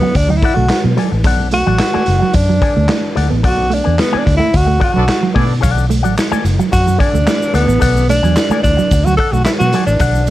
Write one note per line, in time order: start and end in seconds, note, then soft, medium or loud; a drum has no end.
0.00 0.10 F#3 medium
0.00 0.17 B3 medium
0.00 muted clean electric guitar stroke medium
0.15 0.39 D2 medium
0.15 0.31 D4 loud
0.15 muted clean electric guitar stroke soft
0.15 kick medium
0.15 closed hi-hat medium
0.28 0.38 F#3 medium
0.28 0.38 D#4 medium
0.28 muted clean electric guitar stroke medium
0.36 0.56 E4 loud
0.41 0.65 A4 medium
0.41 0.57 D5 medium
0.41 0.57 F#5 loud
0.41 muted clean electric guitar stroke soft
0.41 kick medium
0.41 closed hi-hat medium
0.54 0.69 B1 medium
0.54 0.65 A3 medium
0.54 0.81 F#4 medium
0.54 muted clean electric guitar stroke soft
0.69 muted clean electric guitar stroke soft
0.69 snare loud
0.69 clap medium
0.69 closed hi-hat medium
0.84 0.96 B2 loud
0.84 0.93 F#3 medium
0.97 1.07 F#3 medium
0.97 1.15 A4 medium
0.97 1.12 D5 medium
0.97 1.11 G#5 medium
0.97 closed hi-hat medium
1.12 1.24 A1 medium
1.12 muted clean electric guitar stroke soft
1.24 1.61 B1 loud
1.24 1.47 A4 medium
1.24 1.47 D5 medium
1.24 1.48 F#5 medium
1.24 kick loud
1.24 closed hi-hat loud
1.40 muted clean electric guitar stroke soft
1.51 1.62 A3 medium
1.51 2.36 F#4 loud
1.51 muted clean electric guitar stroke soft
1.51 closed hi-hat medium
1.67 1.79 A1 medium
1.67 1.75 F#3 medium
1.67 1.78 A4 soft
1.67 1.78 D5 medium
1.67 1.79 F#5 medium
1.79 muted clean electric guitar stroke soft
1.79 snare loud
1.79 clap medium
1.79 closed hi-hat medium
1.94 2.03 A3 medium
1.94 2.05 A4 medium
1.94 2.05 D5 medium
1.94 2.07 G#5 medium
1.94 muted fingered electric bass stroke soft
2.06 2.20 F#1 medium
2.06 muted clean electric guitar stroke soft
2.06 closed hi-hat medium
2.19 2.31 F#3 medium
2.19 muted clean electric guitar stroke soft
2.33 2.58 F#2 loud
2.33 3.17 D4 loud
2.33 muted clean electric guitar stroke soft
2.33 kick loud
2.33 closed hi-hat loud
2.49 2.58 F#3 medium
2.61 2.79 A4 medium
2.61 2.75 D5 medium
2.61 2.75 G#5 medium
2.61 muted clean electric guitar stroke soft
2.61 kick loud
2.61 closed hi-hat medium
2.76 2.88 D2 medium
2.76 2.85 A3 medium
2.76 muted clean electric guitar stroke soft
2.88 2.99 A3 medium
2.88 muted clean electric guitar stroke soft
2.88 snare loud
2.88 clap medium
2.88 closed hi-hat medium
3.16 3.30 D2 medium
3.16 3.34 A4 medium
3.16 3.31 D5 medium
3.16 3.30 F#5 medium
3.16 muted clean electric guitar stroke soft
3.16 closed hi-hat medium
3.30 3.44 A1 medium
3.30 3.39 B3 medium
3.30 muted clean electric guitar stroke medium
3.43 3.81 B1 loud
3.43 3.75 F#4 loud
3.43 3.66 A4 medium
3.43 3.66 D5 medium
3.43 3.66 F#5 medium
3.43 kick loud
3.43 closed hi-hat loud
3.58 muted clean electric guitar stroke soft
3.70 3.80 A3 medium
3.70 4.02 D4 medium
3.70 muted clean electric guitar stroke soft
3.70 closed hi-hat medium
3.84 3.98 E2 medium
3.84 3.94 B3 medium
3.84 3.97 A4 soft
3.84 3.97 D5 soft
3.84 3.98 G#5 soft
3.98 4.20 B3 medium
3.98 muted clean electric guitar stroke soft
3.98 snare loud
3.98 clap medium
3.98 closed hi-hat medium
4.13 4.22 B3 medium
4.13 4.24 A4 medium
4.13 4.25 D5 medium
4.13 4.26 G#5 medium
4.13 muted fingered electric bass stroke soft
4.18 4.36 D4 medium
4.25 4.39 D2 loud
4.25 muted clean electric guitar stroke soft
4.25 kick medium
4.25 closed hi-hat medium
4.37 4.49 A3 medium
4.37 4.58 E4 loud
4.37 muted clean electric guitar stroke soft
4.53 4.78 D2 medium
4.53 4.83 F#4 loud
4.53 muted clean electric guitar stroke soft
4.53 kick medium
4.53 closed hi-hat loud
4.66 4.76 A3 medium
4.66 muted clean electric guitar stroke soft
4.79 5.02 A4 medium
4.79 4.94 D5 medium
4.79 4.93 F#5 medium
4.79 muted clean electric guitar stroke soft
4.79 kick medium
4.79 closed hi-hat medium
4.83 5.33 F#4 medium
4.94 5.08 B1 medium
4.94 5.03 F#3 medium
4.94 5.04 B3 medium
4.94 5.04 D4 medium
4.94 5.05 A4 loud
4.94 5.04 D5 medium
4.94 muted clean electric guitar stroke soft
5.06 muted clean electric guitar stroke soft
5.06 snare loud
5.06 clap medium
5.06 closed hi-hat medium
5.23 5.31 F#3 medium
5.34 5.60 B2 medium
5.34 5.45 A3 medium
5.34 5.53 B3 medium
5.34 5.54 D4 medium
5.34 5.53 A4 medium
5.34 5.47 D5 medium
5.34 5.54 D5 medium
5.34 5.47 G#5 medium
5.34 kick medium
5.34 open hi-hat medium
5.47 muted clean electric guitar stroke soft
5.61 6.04 B1 loud
5.61 5.84 A4 medium
5.61 5.85 D5 medium
5.61 5.85 F#5 medium
5.61 kick loud
5.61 closed hi-hat medium
5.61 shaker medium
5.77 muted clean electric guitar stroke soft
5.77 shaker medium
5.89 6.00 A3 medium
5.89 muted clean electric guitar stroke soft
5.89 closed hi-hat medium
5.89 shaker medium
6.03 6.16 A1 medium
6.03 6.14 F#3 medium
6.03 6.15 A4 medium
6.03 6.17 D5 medium
6.03 6.17 F#5 medium
6.03 shaker medium
6.17 muted clean electric guitar stroke soft
6.17 snare loud
6.17 clap medium
6.17 closed hi-hat medium
6.17 shaker medium
6.32 6.41 A3 medium
6.32 6.44 A4 medium
6.32 6.45 D5 medium
6.32 6.47 G#5 medium
6.32 muted fingered electric bass stroke soft
6.32 shaker medium
6.44 6.58 F#1 medium
6.44 muted clean electric guitar stroke soft
6.44 closed hi-hat medium
6.44 shaker medium
6.59 6.68 F#3 medium
6.59 muted clean electric guitar stroke soft
6.59 shaker soft
6.71 6.97 F#2 loud
6.71 7.01 F#4 loud
6.71 muted clean electric guitar stroke soft
6.71 kick loud
6.71 closed hi-hat loud
6.71 shaker medium
6.87 6.96 F#3 medium
6.87 shaker medium
6.98 7.56 D4 loud
6.98 7.17 A4 medium
6.98 7.12 D5 medium
6.98 7.12 G#5 medium
6.98 muted clean electric guitar stroke soft
6.98 kick medium
6.98 closed hi-hat medium
7.12 7.25 D2 medium
7.12 7.23 A3 medium
7.12 muted clean electric guitar stroke soft
7.12 shaker medium
7.26 7.37 A3 medium
7.26 muted clean electric guitar stroke soft
7.26 snare loud
7.26 clap medium
7.26 closed hi-hat medium
7.26 shaker medium
7.43 shaker medium
7.53 7.67 D2 medium
7.53 8.09 B3 medium
7.53 7.72 A4 medium
7.53 7.68 D5 medium
7.53 7.67 F#5 medium
7.53 muted clean electric guitar stroke soft
7.53 closed hi-hat medium
7.53 shaker medium
7.67 7.79 A1 medium
7.67 7.77 B3 medium
7.67 muted clean electric guitar stroke soft
7.67 shaker medium
7.80 8.19 B1 loud
7.80 8.03 A4 medium
7.80 8.03 D5 medium
7.80 8.04 F#5 loud
7.80 kick loud
7.80 closed hi-hat loud
7.80 shaker medium
7.96 muted clean electric guitar stroke soft
7.96 shaker medium
8.08 8.19 A3 medium
8.08 8.60 D4 loud
8.08 muted clean electric guitar stroke soft
8.08 closed hi-hat medium
8.08 shaker medium
8.23 8.35 E2 medium
8.23 8.33 F#3 medium
8.23 8.35 A4 soft
8.23 8.35 D5 medium
8.23 8.37 G#5 medium
8.23 shaker soft
8.36 muted clean electric guitar stroke soft
8.36 snare loud
8.36 clap medium
8.36 closed hi-hat medium
8.36 shaker medium
8.50 8.60 A3 medium
8.50 8.62 A4 medium
8.50 8.62 D5 medium
8.50 8.63 G#5 medium
8.50 muted fingered electric bass stroke soft
8.50 shaker medium
8.63 8.77 D2 loud
8.63 9.06 D4 loud
8.63 muted clean electric guitar stroke soft
8.63 kick medium
8.63 closed hi-hat medium
8.63 shaker medium
8.77 8.87 F#3 medium
8.77 muted clean electric guitar stroke soft
8.77 shaker medium
8.91 9.15 D2 medium
8.91 muted clean electric guitar stroke soft
8.91 kick loud
8.91 closed hi-hat medium
8.91 shaker medium
9.05 9.15 F#3 medium
9.05 9.16 F#4 loud
9.05 muted clean electric guitar stroke soft
9.05 shaker medium
9.17 9.34 A4 loud
9.17 9.40 A4 medium
9.17 9.33 D5 medium
9.17 9.31 F#5 medium
9.17 kick medium
9.17 closed hi-hat medium
9.32 9.44 B1 medium
9.32 9.42 A3 medium
9.32 9.43 F#4 medium
9.32 muted clean electric guitar stroke soft
9.32 shaker medium
9.44 9.51 E4 medium
9.44 muted clean electric guitar stroke soft
9.44 snare loud
9.44 clap medium
9.44 closed hi-hat medium
9.44 shaker medium
9.59 9.72 B2 loud
9.59 9.69 F#3 medium
9.59 9.85 F#4 loud
9.59 shaker medium
9.72 9.83 F#3 medium
9.72 9.91 A4 medium
9.72 9.87 D5 medium
9.72 9.87 G#5 medium
9.72 closed hi-hat medium
9.72 shaker medium
9.86 9.99 A1 medium
9.86 10.30 D4 medium
9.86 muted clean electric guitar stroke medium
9.86 shaker medium
9.99 10.30 B1 loud
9.99 10.22 A4 medium
9.99 10.22 D5 medium
9.99 10.23 F#5 medium
9.99 kick loud
9.99 closed hi-hat loud
9.99 shaker medium
10.15 muted clean electric guitar stroke soft
10.15 shaker medium
10.27 closed hi-hat medium
10.27 shaker medium